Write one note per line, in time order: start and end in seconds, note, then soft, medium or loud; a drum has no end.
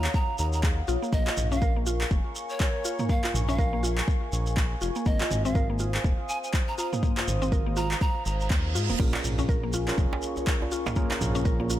0.00 1.09 C#5 medium
0.00 5.02 F5 medium
0.00 1.09 F#5 medium
0.00 0.12 A#5 medium
0.00 1.09 D#6 medium
0.04 clap medium
0.04 shekere soft
0.14 0.37 A#5 medium
0.14 kick loud
0.14 shekere soft
0.38 0.82 D#2 loud
0.38 0.48 A#5 medium
0.38 shekere medium
0.53 0.60 A#5 medium
0.53 shekere medium
0.63 0.71 G#4 medium
0.63 kick loud
0.63 clap medium
0.63 shekere soft
0.88 0.97 A#1 medium
0.88 0.96 F4 loud
0.88 shekere medium
1.02 1.11 A#3 medium
1.02 shekere medium
1.13 1.30 A#1 loud
1.13 1.26 A#3 medium
1.13 5.02 A#4 medium
1.13 1.49 D#5 medium
1.13 6.99 G#5 medium
1.13 5.02 C#6 medium
1.13 kick loud
1.13 shekere soft
1.27 1.36 F4 medium
1.27 clap medium
1.37 2.05 A#1 medium
1.37 mid tom medium
1.37 shekere medium
1.52 1.57 C#4 loud
1.52 1.73 F5 medium
1.52 shekere medium
1.62 1.75 A#4 loud
1.62 kick loud
1.62 shekere soft
1.76 1.85 A#3 medium
1.86 2.00 F4 medium
1.86 shekere loud
2.01 clap medium
2.01 shekere medium
2.11 2.20 F1 medium
2.11 kick loud
2.11 shekere soft
2.36 shekere medium
2.49 3.07 C#5 medium
2.49 shekere soft
2.60 kick loud
2.60 clap medium
2.60 shekere soft
2.85 2.98 F4 medium
2.85 shekere medium
2.99 3.05 A#3 medium
2.99 mid tom medium
2.99 shekere soft
3.09 3.22 A#3 medium
3.09 3.32 F5 medium
3.09 kick loud
3.09 shekere soft
3.24 3.33 F4 medium
3.24 clap medium
3.34 4.02 A#1 medium
3.34 mid tom medium
3.34 shekere medium
3.48 3.54 C#4 loud
3.48 3.83 F5 medium
3.48 shekere soft
3.59 3.72 A#4 loud
3.59 kick loud
3.59 shekere soft
3.73 3.82 A#3 medium
3.83 3.96 F4 medium
3.83 shekere medium
3.98 clap medium
3.98 shekere medium
4.08 kick loud
4.08 shekere soft
4.32 4.75 A#1 loud
4.32 shekere medium
4.47 shekere soft
4.57 kick loud
4.57 clap medium
4.57 shekere soft
4.81 4.91 F1 medium
4.81 4.95 F4 medium
4.81 shekere medium
4.96 5.01 A#3 medium
4.96 shekere medium
5.06 5.23 G#1 loud
5.06 5.19 A#3 medium
5.06 8.96 C5 medium
5.06 5.42 D#5 medium
5.06 8.96 F5 medium
5.06 8.96 D#6 medium
5.06 kick loud
5.06 shekere soft
5.21 5.30 F4 medium
5.21 clap medium
5.31 5.98 G#1 medium
5.31 mid tom medium
5.31 shekere medium
5.45 5.51 C4 loud
5.45 5.66 F5 medium
5.45 shekere soft
5.55 5.68 A#4 loud
5.55 kick loud
5.55 shekere soft
5.70 5.79 A#3 medium
5.79 5.93 F4 medium
5.79 shekere medium
5.94 clap medium
5.94 shekere soft
6.04 6.13 D#1 medium
6.04 kick loud
6.04 shekere soft
6.29 6.38 G#5 medium
6.29 shekere medium
6.43 6.50 G#5 medium
6.43 shekere soft
6.54 kick loud
6.54 clap medium
6.54 shekere soft
6.68 6.75 A#5 medium
6.78 6.91 F4 medium
6.78 6.87 A#5 medium
6.78 shekere medium
6.93 6.98 A#3 medium
6.93 mid tom medium
6.93 shekere soft
7.03 7.16 A#3 medium
7.03 8.98 A#5 medium
7.03 kick loud
7.03 mid tom medium
7.03 shekere soft
7.17 7.26 F4 medium
7.17 clap medium
7.28 7.95 G#1 medium
7.28 mid tom medium
7.28 shekere medium
7.42 7.47 C4 loud
7.42 shekere medium
7.52 7.65 A#4 loud
7.52 kick loud
7.52 shekere soft
7.66 7.76 A#3 medium
7.76 7.90 F4 medium
7.76 7.99 A#5 medium
7.76 shekere medium
7.91 clap medium
7.91 shekere soft
8.01 8.24 A#5 medium
8.01 kick loud
8.01 reverse cymbal medium
8.01 shekere soft
8.26 8.50 G#1 loud
8.26 8.35 A#5 medium
8.26 shekere medium
8.40 8.47 A#5 medium
8.40 shekere soft
8.50 8.76 D#2 loud
8.50 kick loud
8.50 clap medium
8.50 shekere soft
8.75 8.91 G#2 medium
8.75 8.88 F4 medium
8.75 shekere medium
8.89 8.96 D#1 medium
8.89 8.95 A#3 medium
8.89 shekere soft
9.00 9.17 A#1 medium
9.00 9.13 A#3 medium
9.00 9.84 C#4 medium
9.00 9.84 F4 medium
9.00 9.84 G#4 medium
9.00 11.79 A#4 medium
9.00 9.84 A#4 medium
9.00 11.79 F5 medium
9.00 10.94 G#5 medium
9.00 11.79 C#6 medium
9.00 kick loud
9.00 crash medium
9.00 shekere soft
9.13 9.23 F4 medium
9.13 clap medium
9.13 djembe slap loud
9.13 djembe tone medium
9.24 9.92 A#1 medium
9.24 mid tom medium
9.24 shekere medium
9.38 9.44 C#4 loud
9.38 djembe tone medium
9.38 shekere medium
9.49 9.62 A#4 loud
9.49 kick loud
9.49 shekere soft
9.63 9.72 A#3 medium
9.73 9.87 F4 medium
9.73 djembe tone medium
9.73 shekere medium
9.88 10.94 C#4 medium
9.88 10.94 F4 medium
9.88 10.94 G#4 medium
9.88 10.94 A#4 medium
9.88 clap medium
9.88 shekere soft
9.98 10.07 F1 medium
9.98 kick loud
9.98 djembe tone medium
9.98 shekere soft
10.13 djembe slap medium
10.22 shekere medium
10.37 djembe tone medium
10.37 shekere medium
10.47 kick loud
10.47 clap medium
10.47 shekere soft
10.62 djembe tone medium
10.72 10.85 F4 medium
10.72 shekere medium
10.86 10.92 A#3 medium
10.86 mid tom medium
10.86 djembe slap loud
10.86 shekere soft
10.96 11.09 A#3 medium
10.96 11.79 C#4 loud
10.96 11.79 F4 medium
10.96 11.79 G#4 medium
10.96 11.79 A#4 loud
10.96 11.79 A#5 medium
10.96 kick loud
10.96 djembe tone medium
10.96 shekere soft
11.11 11.20 F4 medium
11.11 clap medium
11.11 djembe slap loud
11.21 11.79 A#1 medium
11.21 mid tom medium
11.21 djembe tone medium
11.21 shekere medium
11.35 11.41 C#4 loud
11.35 shekere medium
11.45 11.58 A#4 loud
11.45 kick loud
11.45 shekere soft
11.60 11.69 A#3 medium
11.60 djembe tone medium
11.70 11.79 F4 medium
11.70 shekere loud